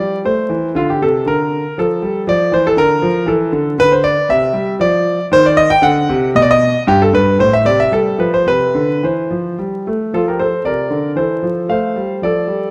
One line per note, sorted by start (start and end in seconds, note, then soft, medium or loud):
0.00 0.23 G3 medium
0.00 0.17 D5 medium
0.25 0.49 A3 medium
0.25 0.68 C5 medium
0.50 0.74 E3 medium
0.75 0.99 D3 medium
0.75 0.88 F4 medium
0.90 1.01 G4 medium
1.02 1.25 C3 medium
1.02 1.23 A4 medium
1.26 1.62 D3 medium
1.26 1.77 A#4 medium
1.78 2.01 F3 medium
1.78 2.21 A4 medium
2.02 2.26 G3 medium
2.27 2.51 F3 medium
2.27 2.53 D5 loud
2.52 2.76 E3 medium
2.52 2.65 C5 medium
2.67 2.78 A4 loud
2.77 3.01 D3 medium
2.77 3.28 A#4 loud
3.02 3.26 F3 medium
3.26 3.51 E3 medium
3.26 3.70 A4 medium
3.52 3.76 D3 medium
3.78 4.15 D3 medium
3.78 3.91 B4 loud
3.92 4.04 C5 medium
4.04 4.29 D5 loud
4.29 4.53 C3 medium
4.29 4.73 E5 loud
4.53 4.78 G3 medium
4.80 5.17 F3 medium
4.80 5.24 D5 loud
5.32 5.69 D#3 medium
5.32 5.45 C5 loud
5.46 5.58 D5 loud
5.57 5.70 D#5 loud
5.70 5.83 G5 loud
5.82 6.07 D3 medium
5.82 6.27 F#5 loud
6.09 6.34 C3 medium
6.35 6.72 B2 medium
6.35 6.42 D#5 loud
6.42 6.49 D5 loud
6.51 6.82 D#5 loud
6.87 7.11 G2 medium
6.87 7.00 G4 loud
7.02 7.14 A4 medium
7.13 7.38 G2 medium
7.13 7.36 B4 loud
7.39 7.64 A2 medium
7.39 7.53 C5 loud
7.53 7.66 E5 loud
7.65 7.90 C3 medium
7.65 7.79 D5 loud
7.80 7.92 E5 loud
7.92 8.18 G3 medium
7.92 8.20 A4 medium
8.18 8.45 F3 medium
8.18 8.33 B4 medium
8.34 8.48 C5 medium
8.46 8.74 C3 medium
8.46 9.04 B4 loud
8.75 9.02 D3 medium
9.03 9.29 E3 medium
9.03 9.59 C5 medium
9.31 9.57 F3 medium
9.59 9.85 G3 medium
9.87 10.13 A3 medium
10.13 10.51 F3 medium
10.13 10.27 F4 medium
10.13 10.27 A4 medium
10.28 10.40 G4 soft
10.28 10.40 A#4 medium
10.39 10.64 A4 medium
10.39 10.62 C5 medium
10.64 10.90 C3 soft
10.64 11.14 A#4 medium
10.64 11.10 D5 medium
10.90 11.16 D3 medium
11.16 11.41 E3 soft
11.16 11.66 A4 medium
11.16 11.69 C5 medium
11.43 11.68 F3 soft
11.69 11.94 A3 medium
11.69 12.19 C5 medium
11.69 12.14 F5 medium
11.96 12.21 G3 soft
12.22 12.46 F3 soft
12.22 12.71 A4 medium
12.22 12.67 D5 medium
12.48 12.71 G3 soft